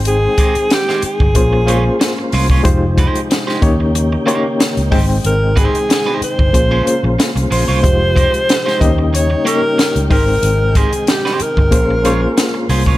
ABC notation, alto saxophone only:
X:1
M:4/4
L:1/8
Q:"Swing 16ths" 1/4=93
K:Ab
V:1 name="Alto saxophone"
A2 G A4 z | z8 | B A2 c3 z c- | c4 d B2 B- |
B A G B4 z |]